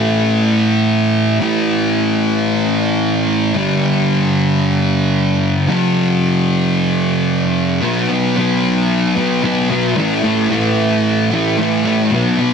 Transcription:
Already playing: A2 E3 A3
1.39 A2 E3 A3
3.54 G2 D3 G3
5.68 F#2 C#3 F#3
7.82 B2 F#3 B3
8.09 F#3 B3
8.36 B2 F#3 B3
9.15 F#3 B3
9.43 B2 F#3 B3
9.70 F#3 B3
9.96 A2 E3 A3
10.23 E3 A3
10.50 A2 E3 A3
11.31 E3 A3
11.58 A2 E3 A3
11.84 E3 A3
12.11 B2 F#3 B3
12.38 F#3 B3

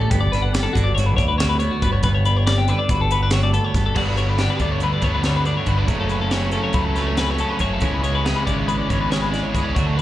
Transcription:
Already playing: D3 A4
0.00 A3 A4
0.10 G1 G2 B3 G4, kick, closed hi-hat
0.21 D5
0.32 G1 D4 B4, snare, closed hi-hat
0.42 F#5
0.53 B3 D5, snare, closed hi-hat
0.63 A4
0.73 G1 D3 D4 F#4, kick, closed hi-hat
0.84 D5
0.95 G1 C#5, snare, closed hi-hat
0.99 F#4
1.06 B4
1.17 D2 D4 C#5, kick, closed hi-hat
1.28 B4
1.38 D2 F#4 C#5, snare, closed hi-hat
1.49 B4
1.59 B3 C#5, closed hi-hat
1.71 F#4
1.82 G1 G2 B3 B4, kick, closed hi-hat
1.93 C#5
2.03 G1 G2 B3 B4, kick, closed hi-hat
2.15 C#5
2.25 D4 B4, closed hi-hat
2.37 C#5
2.47 B3 D5, snare, closed hi-hat
2.58 G4
2.68 D3 D4 B4, closed hi-hat
2.79 D5
2.89 G1 F#4 B4, kick, closed hi-hat
3.01 A4
3.11 B3 B4, closed hi-hat
3.23 D4 B4
3.31 D2 F#4 C#5, snare, closed hi-hat
3.43 D5
3.54 B3 A4, closed hi-hat
3.65 C#5
3.74 G1 G2 B3 A4, kick, snare, closed hi-hat
3.86 A4
3.95 G1 G2 D3 G3 B3 D4 F#4 D5, kick, crash
4.08 B4
4.15 D3 G3 B3 D4 C#5, closed hi-hat
4.29 B4
4.37 G2 D3 G3 B3 D4 G4, snare, closed hi-hat
4.50 B4
4.57 D2 B3 D4, kick, closed hi-hat
4.61 G3 D5
4.72 C#5
4.80 D3 B4, closed hi-hat
4.94 D5
5.00 D2 G3 B3 D4 C#5, kick, closed hi-hat
5.14 B4
5.22 D3 G3 B3 D4 C#5, snare, closed hi-hat
5.36 B4
5.45 D4 D5, closed hi-hat
5.57 C#5
5.65 G1 G2 D3 G3 B3 D4 F#4 B4, kick, closed hi-hat
5.78 D5
5.86 F#1 F#2 C#3 F#3 A3 C#4 E4 C#5, kick, closed hi-hat
5.90 C#4
6.01 A4
6.08 F#3 A3 C#4 B4, closed hi-hat
6.22 A4
6.31 F#2 C#3 F#3 A3 C#4 C#5, snare, closed hi-hat
6.42 B4
6.52 A3 C#4 A4, closed hi-hat
6.56 F#3
6.64 C#5
6.73 C#2 F#3 B4, kick, closed hi-hat
6.85 A4
6.95 A3 C#4 B4, snare, closed hi-hat
6.99 F#3
7.07 C#5
7.17 C#3 F#3 A3 C#4 B4, snare, closed hi-hat
7.30 C#5
7.38 B3 A4, closed hi-hat
7.49 C#4 B4
7.58 F#1 F#2 C#3 F#3 A3 C#4 F#4 C#5, kick, closed hi-hat
7.73 A4
7.80 C#2 C#3 E3 G#3 B3 C#4 E4 C#5, kick, closed hi-hat
7.84 G#4
7.93 B4
8.02 E3 G#3 C#4 C#5, closed hi-hat
8.15 B4
8.23 C#3 E3 G#3 C#4 G#4, snare, closed hi-hat
8.27 E4
8.36 B4
8.45 G#1 E3 G#3 B3 C#4 D5, kick, closed hi-hat
8.58 C#5
8.67 G#3 B4, closed hi-hat
8.78 D5
8.89 G#1 E3 G#3 B3 C#4 C#5, kick, closed hi-hat
9.01 B4
9.10 C#3 E3 G#3 C#4 C#5, snare, closed hi-hat
9.22 B4
9.32 E4 D5, snare, closed hi-hat
9.43 C#5
9.53 C#2 C#3 E3 G#3 C#4 G#4 B4, kick, closed hi-hat
9.64 D5
9.73 D2 D3 F#3 A3 D4 F#4 C#5, kick, closed hi-hat
9.86 A4
9.95 D3 A3 D4 B4

